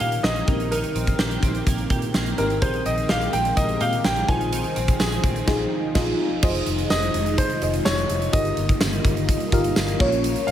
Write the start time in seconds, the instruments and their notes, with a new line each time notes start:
Already playing: clean electric guitar D#3 A#3 C#4, fm electric piano C#4 D#4 G4 A#4
0.00 fingered electric bass A#2, clean electric guitar G4, grand piano F5, closed hi-hat
0.12 closed hi-hat
0.23 fingered electric bass A#1, clean electric guitar A#3, grand piano D#5, snare
0.36 closed hi-hat
0.47 fingered electric bass A#1, clean electric guitar D#3, fm electric piano C4 D#4 G4 A#4, kick, closed hi-hat
0.60 closed hi-hat
0.71 clean electric guitar D#3, grand piano A#4, closed hi-hat
0.84 closed hi-hat
0.95 fingered electric bass A#1, clean electric guitar C4, closed hi-hat
1.07 kick, closed hi-hat
1.19 fingered electric bass A#1, clean electric guitar G4, snare
1.31 closed hi-hat
1.43 fingered electric bass A#1, clean electric guitar C4, kick, closed hi-hat
1.55 closed hi-hat
1.67 fingered electric bass A#1, clean electric guitar A#3, kick, closed hi-hat
1.78 closed hi-hat
1.90 fingered electric bass A#2, clean electric guitar G4, kick, closed hi-hat
2.02 closed hi-hat
2.14 fingered electric bass A#1, clean electric guitar A#3, snare
2.26 closed hi-hat
2.38 fingered electric bass G#1, fm electric piano C4 D#4 G4 A#4, clean electric guitar C4, grand piano A#4, closed hi-hat
2.50 closed hi-hat
2.61 fingered electric bass A#1, clean electric guitar D#3, string machine G#3 C4 A#4 G5, fm electric piano C4 G4 G#4 A#4, grand piano C5, kick, closed hi-hat
2.74 closed hi-hat
2.86 fingered electric bass A#1, clean electric guitar C4, grand piano D#5, closed hi-hat
2.98 closed hi-hat
3.09 fingered electric bass A#1, clean electric guitar G4, grand piano F5, snare
3.21 closed hi-hat
3.33 fingered electric bass A#1, clean electric guitar C4, grand piano G5, closed hi-hat
3.45 closed hi-hat
3.57 fingered electric bass A#1, clean electric guitar A#3, grand piano D#5, kick, closed hi-hat
3.69 closed hi-hat
3.81 fingered electric bass A#2, clean electric guitar G4, grand piano F5, closed hi-hat
3.93 closed hi-hat
4.04 fingered electric bass A#1, clean electric guitar A#3, grand piano G5, snare
4.16 closed hi-hat
4.28 fingered electric bass A#1, clean electric guitar D#3, string machine F3 D#4 G#4, fm electric piano D#4 F4 G#4 C5, grand piano G#5, kick, closed hi-hat
4.41 closed hi-hat
4.52 clean electric guitar D#3, closed hi-hat
4.64 closed hi-hat
4.76 fingered electric bass A#1, clean electric guitar C4, closed hi-hat
4.88 kick, closed hi-hat
5.00 fingered electric bass A#1, clean electric guitar G#4, snare, tambourine
5.12 closed hi-hat
5.24 fingered electric bass A#1, clean electric guitar C4, kick, closed hi-hat
5.36 closed hi-hat
5.47 fingered electric bass A#1, fm electric piano D#4 F4 G#4, kick, snare, crash
5.95 fingered electric bass A#1, fm electric piano D#4 F4 G#4, kick, snare, crash
6.43 fingered electric bass F1, string machine C3 D#3 G#3 F4, fm electric piano D#4 F4 G#4 C5 D#5, kick, crash
6.55 closed hi-hat
6.66 fingered electric bass F1, closed hi-hat
6.79 closed hi-hat
6.90 fingered electric bass F1, grand piano D#5, snare, tambourine
7.03 closed hi-hat
7.14 fingered electric bass F1, closed hi-hat
7.26 closed hi-hat
7.38 grand piano C5, kick, closed hi-hat
7.50 closed hi-hat
7.62 fingered electric bass F1, fm electric piano D#4 F4 G#4 C5 D#5, closed hi-hat
7.74 closed hi-hat
7.85 fingered electric bass F1, grand piano C#5, snare, tambourine
7.98 closed hi-hat
8.09 fingered electric bass F1, closed hi-hat
8.22 closed hi-hat
8.33 fingered electric bass G1, string machine D#3 G3 A#3, fm electric piano D#4 F4 G4 A#4 D#5, grand piano D#5, kick, closed hi-hat
8.45 closed hi-hat
8.57 fingered electric bass G1, closed hi-hat
8.69 kick, closed hi-hat
8.81 fingered electric bass G1, snare, tambourine
8.93 closed hi-hat
9.05 fingered electric bass G1, kick, closed hi-hat
9.17 closed hi-hat
9.29 kick, closed hi-hat
9.40 closed hi-hat
9.52 fingered electric bass G1, fm electric piano D#4 F4 G4 A#4 F5, kick, closed hi-hat
9.64 closed hi-hat
9.76 fingered electric bass G1, snare, tambourine
9.88 closed hi-hat
10.00 fingered electric bass A#1, string machine C#3 F3 A#3, fm electric piano A#3 C#4 F4 A#4 C#5, kick, crash
10.12 closed hi-hat
10.24 closed hi-hat
10.36 closed hi-hat
10.47 fingered electric bass A#1, grand piano F5, closed hi-hat